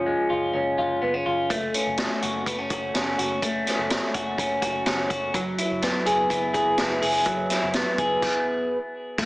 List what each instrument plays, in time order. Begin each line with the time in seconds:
Already playing: picked electric bass F#1, clean electric guitar F3 C#4 F4
0.06 clean electric guitar G#3
0.30 picked electric bass F#1, clean electric guitar F4
0.53 picked electric bass F#1, clean electric guitar C#4
0.78 picked electric bass F#1, clean electric guitar F4
1.02 picked electric bass F#1, clean electric guitar B3
1.14 clean electric guitar C#4
1.26 picked electric bass F#1, clean electric guitar F4
1.50 picked electric bass F#1, clean electric guitar A3, kick, closed hi-hat
1.74 clean electric guitar C#4, closed hi-hat
1.87 picked electric bass F#1
1.97 clean electric guitar A3, snare, closed hi-hat
2.22 picked electric bass F#1, clean electric guitar F#4, closed hi-hat
2.46 picked electric bass F#1, clean electric guitar B3, kick, closed hi-hat
2.59 clean electric guitar C#4
2.70 picked electric bass F#1, clean electric guitar F#4, kick, closed hi-hat
2.94 picked electric bass F#1, clean electric guitar C#4, snare, closed hi-hat
3.18 picked electric bass F#1, clean electric guitar F#4, closed hi-hat
3.42 picked electric bass F#1, clean electric guitar A3, kick, closed hi-hat
3.66 clean electric guitar C#4, snare, closed hi-hat
3.79 picked electric bass F#1
3.90 clean electric guitar A3, snare, closed hi-hat
4.14 picked electric bass F#1, clean electric guitar F#4, kick, closed hi-hat
4.38 picked electric bass F#1, clean electric guitar C#4, kick, closed hi-hat
4.62 picked electric bass F#1, clean electric guitar F#4, kick, closed hi-hat
4.86 picked electric bass F#1, clean electric guitar C#4, snare, closed hi-hat
5.10 picked electric bass F#1, clean electric guitar F#4, kick, closed hi-hat
5.34 picked electric bass F#1, clean electric guitar F#3, kick, closed hi-hat
5.58 clean electric guitar E4, closed hi-hat
5.71 picked electric bass F#1
5.82 clean electric guitar B3, snare, closed hi-hat
6.06 picked electric bass F#1, clean electric guitar G#4, closed hi-hat
6.30 picked electric bass F#1, clean electric guitar E4, kick, closed hi-hat
6.54 picked electric bass F#1, clean electric guitar G#4, kick, closed hi-hat
6.78 picked electric bass F#1, clean electric guitar E4, snare, closed hi-hat
7.02 picked electric bass F#1, clean electric guitar G#4, open hi-hat
7.26 picked electric bass F#1, clean electric guitar F#3, kick, closed hi-hat
7.50 clean electric guitar E4, snare, closed hi-hat
7.63 picked electric bass F#1
7.73 clean electric guitar B3, snare, closed hi-hat
7.98 picked electric bass F#1, clean electric guitar G#4, kick, closed hi-hat
8.22 kick, crash
9.18 picked electric bass E1, clean electric guitar B3, kick, crash